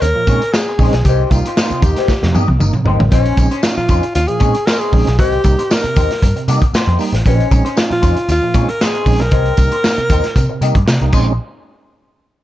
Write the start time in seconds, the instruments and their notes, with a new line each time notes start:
0.01 picked electric bass D#2, tonewheel organ C#4 D#4, alto saxophone A#4, muted clean electric guitar stroke, closed hi-hat, tambourine
0.15 tonewheel organ A#2 F3, muted clean electric guitar stroke
0.27 picked electric bass A#2, tonewheel organ G#3 C4 C#4 D#4, clean electric guitar C#4 D#4 G#4 C#5, kick, closed hi-hat, tambourine
0.42 muted clean electric guitar stroke, closed hi-hat
0.53 alto saxophone G#4, muted clean electric guitar stroke, snare, tambourine
0.69 muted clean electric guitar stroke
0.79 picked electric bass A#1, tonewheel organ G#3 C4 C#4 D#4, clean electric guitar C#4 D#4 G#4 C5, kick, open hi-hat, tambourine
0.93 picked electric bass B1, muted clean electric guitar stroke, snare, closed hi-hat
1.05 picked electric bass C2, tonewheel organ C3, clean electric guitar A#3 D#4 G4, alto saxophone G4, kick, closed hi-hat, tambourine
1.09 clean electric guitar C5
1.25 alto saxophone G4
1.30 picked electric bass C2, tonewheel organ G3 A#3 D#4, alto saxophone F4, muted clean electric guitar stroke, kick, closed hi-hat, tambourine
1.45 tonewheel organ A#3 D#4, clean electric guitar D#4 G4 C5, closed hi-hat
1.49 clean electric guitar A#3
1.56 tonewheel organ A#3 D#4, clean electric guitar A#3 D#4 G4, snare, tambourine
1.61 clean electric guitar C5
1.70 tonewheel organ C3, muted picked electric bass stroke, closed hi-hat
1.81 picked electric bass D#2, tonewheel organ A#3 D#4, alto saxophone G4, muted clean electric guitar stroke, kick, closed hi-hat, tambourine
1.96 clean electric guitar A#3 D#4 G4 C5, snare, closed hi-hat
2.08 tonewheel organ A#3 D#4, muted clean electric guitar stroke, kick, snare, tambourine
2.21 picked electric bass F2, tonewheel organ C3, muted clean electric guitar stroke, snare
2.32 picked electric bass G2, tonewheel organ G3 A#3 D#4, clean electric guitar A#3 D#4 G4 D#5, high tom, tambourine
2.48 picked electric bass C2, muted clean electric guitar stroke, high tom
2.59 picked electric bass G1, tonewheel organ A#3 D#4, muted clean electric guitar stroke, mid tom, tambourine
2.72 tonewheel organ C3, muted clean electric guitar stroke, mid tom
2.84 picked electric bass G#1, tonewheel organ A#3 D#4, clean electric guitar A#3 D#4 G4 C5, floor tom
3.00 picked electric bass A1, muted clean electric guitar stroke, floor tom
3.11 picked electric bass A#1, tonewheel organ A#2 F3, alto saxophone C#4, clean electric guitar C#4 D#4 G#4 C5, kick, closed hi-hat, tambourine
3.25 closed hi-hat
3.36 picked electric bass A#1, tonewheel organ G#3 C4 C#4 D#4, muted clean electric guitar stroke, kick, closed hi-hat, tambourine
3.50 tonewheel organ C#4 D#4, clean electric guitar C#4 D#4 G#4 C5, closed hi-hat
3.63 tonewheel organ C#4 D#4, alto saxophone F4, muted clean electric guitar stroke, snare, tambourine
3.77 tonewheel organ A#2 F3, alto saxophone F4, muted picked electric bass stroke
3.89 picked electric bass F2, tonewheel organ C#4 D#4, clean electric guitar C#4 D#4 G#4 C5, kick, closed hi-hat, tambourine
4.03 muted clean electric guitar stroke, closed hi-hat
4.14 picked electric bass D#2, tonewheel organ C#4 D#4, alto saxophone F4, muted clean electric guitar stroke, closed hi-hat, tambourine
4.28 tonewheel organ A#2 F3, alto saxophone G#4, muted clean electric guitar stroke, closed hi-hat
4.40 picked electric bass A#2, tonewheel organ G#3 C4 C#4 D#4, clean electric guitar C#4 D#4 G#4 C#5, kick, closed hi-hat, tambourine
4.54 muted clean electric guitar stroke, closed hi-hat
4.66 clean electric guitar C#4 D#4 G#4 C5, alto saxophone A#4, snare, tambourine
4.80 alto saxophone G#4, closed hi-hat
4.92 picked electric bass A#1, tonewheel organ G#3 C4 C#4 D#4, kick, open hi-hat
5.07 picked electric bass B1, muted clean electric guitar stroke, snare, closed hi-hat
5.19 picked electric bass C2, tonewheel organ C3, clean electric guitar A#3 D#4 G4 C5, alto saxophone G4, kick, closed hi-hat, tambourine
5.32 closed hi-hat
5.44 picked electric bass C2, tonewheel organ G3 A#3 D#4, muted clean electric guitar stroke, kick, closed hi-hat, tambourine
5.58 tonewheel organ A#3 D#4, clean electric guitar A#3 D#4 G4 C5, closed hi-hat
5.70 tonewheel organ A#3 D#4, alto saxophone A#4, muted clean electric guitar stroke, snare, tambourine
5.84 tonewheel organ C3, muted picked electric bass stroke, closed hi-hat
5.96 picked electric bass D#2, tonewheel organ A#3 D#4, clean electric guitar A#3 D#4 G4 C5, kick, closed hi-hat, tambourine
6.11 muted clean electric guitar stroke, snare, closed hi-hat
6.22 picked electric bass G2, tonewheel organ A#3 D#4, muted clean electric guitar stroke, kick, closed hi-hat, tambourine
6.36 tonewheel organ C3, muted clean electric guitar stroke, closed hi-hat
6.48 picked electric bass C3, tonewheel organ G3 A#3 D#4, clean electric guitar A#3 D#4 G4 D#5, closed hi-hat, tambourine
6.61 muted clean electric guitar stroke, kick, closed hi-hat
6.74 clean electric guitar A#3 D#4 G4 C5, muted picked electric bass stroke, snare, tambourine
6.87 picked electric bass F2, closed hi-hat
6.99 tonewheel organ G3 A#3 D#4, muted clean electric guitar stroke, open hi-hat, tambourine
7.13 picked electric bass A1, muted clean electric guitar stroke, snare, closed hi-hat
7.25 picked electric bass A#1, tonewheel organ A#2 F3, clean electric guitar C#4 D#4 G#4 C5, alto saxophone C#4, kick, closed hi-hat, tambourine
7.40 closed hi-hat
7.51 picked electric bass A#1, tonewheel organ G#3 C4 C#4 D#4, muted clean electric guitar stroke, kick, closed hi-hat, tambourine
7.65 tonewheel organ C#4 D#4, clean electric guitar C#4 D#4 G#4 C5, closed hi-hat
7.76 tonewheel organ C#4 D#4, alto saxophone F4, muted clean electric guitar stroke, snare, tambourine
7.90 tonewheel organ A#2 F3, alto saxophone F4, muted picked electric bass stroke, closed hi-hat
8.01 picked electric bass F2, clean electric guitar C#4 D#4 G#4 C5, tonewheel organ C#4 D#4, kick, closed hi-hat, tambourine
8.16 muted clean electric guitar stroke, closed hi-hat
8.28 picked electric bass D#2, tonewheel organ C#4 D#4, alto saxophone F4, muted clean electric guitar stroke, closed hi-hat, tambourine
8.42 tonewheel organ A#2 F3, muted clean electric guitar stroke
8.54 picked electric bass A#2, tonewheel organ G#3 C4 C#4 D#4, clean electric guitar C#4 D#4 G#4 C#5, kick, closed hi-hat, tambourine
8.68 alto saxophone A#4, muted clean electric guitar stroke, closed hi-hat
8.81 clean electric guitar C#4 D#4 G#4 C5, alto saxophone G#4, snare, tambourine
8.95 closed hi-hat
9.06 picked electric bass A#1, tonewheel organ G#3 C4 C#4 D#4, muted clean electric guitar stroke, kick, open hi-hat, tambourine
9.19 picked electric bass B1, alto saxophone A#4, muted clean electric guitar stroke, snare, closed hi-hat
9.31 picked electric bass C2, tonewheel organ C3, clean electric guitar A#3 D#4 G4 C5, kick, closed hi-hat
9.45 closed hi-hat
9.57 picked electric bass C2, tonewheel organ G3 A#3 D#4, kick, closed hi-hat, tambourine
9.71 tonewheel organ A#3 D#4, clean electric guitar A#3 D#4 G4 C5, closed hi-hat
9.83 tonewheel organ A#3 D#4, muted clean electric guitar stroke, snare, tambourine
9.98 tonewheel organ C3, muted picked electric bass stroke, closed hi-hat
10.10 picked electric bass D#2, tonewheel organ A#3 D#4, clean electric guitar A#3 D#4 G4 C5, kick, closed hi-hat, tambourine
10.24 muted clean electric guitar stroke, snare, closed hi-hat
10.35 picked electric bass C3, tonewheel organ A#3 D#4, muted clean electric guitar stroke, kick, closed hi-hat, tambourine
10.49 tonewheel organ C3, muted clean electric guitar stroke
10.61 picked electric bass C3, tonewheel organ G3 A#3 D#4, clean electric guitar A#3 D#4 G4 D#5, closed hi-hat, tambourine
10.75 picked electric bass G2, muted clean electric guitar stroke, kick, closed hi-hat
10.86 picked electric bass C3, muted clean electric guitar stroke, snare, tambourine
11.01 picked electric bass C2, tonewheel organ G3 A#3 D#4, closed hi-hat
11.12 picked electric bass A#1, tonewheel organ G#3 C4 C#4 D#4, clean electric guitar C#4 D#4 G#4 C5, kick, crash, tambourine